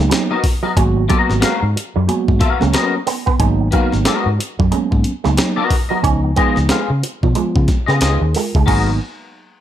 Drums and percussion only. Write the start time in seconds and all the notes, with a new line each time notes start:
0.11 snare, closed hi-hat
0.44 kick, open hi-hat
0.77 kick, closed hi-hat
1.10 kick, closed hi-hat
1.30 snare
1.42 snare, closed hi-hat
1.77 closed hi-hat
2.09 closed hi-hat
2.28 kick
2.41 kick, closed hi-hat
2.61 snare
2.73 snare, closed hi-hat
3.07 open hi-hat
3.27 kick
3.40 kick, closed hi-hat
3.72 kick, closed hi-hat
3.92 snare
4.05 snare, closed hi-hat
4.40 closed hi-hat
4.60 kick
4.72 closed hi-hat
4.92 kick
5.04 closed hi-hat
5.24 snare
5.37 snare, closed hi-hat
5.70 kick, open hi-hat
6.04 kick, closed hi-hat
6.36 kick, closed hi-hat
6.56 snare
6.69 snare, closed hi-hat
7.03 closed hi-hat
7.23 kick
7.35 closed hi-hat
7.56 kick
7.68 kick, snare, closed hi-hat
7.88 snare
8.01 snare, closed hi-hat
8.35 open hi-hat
8.55 kick
8.68 kick, crash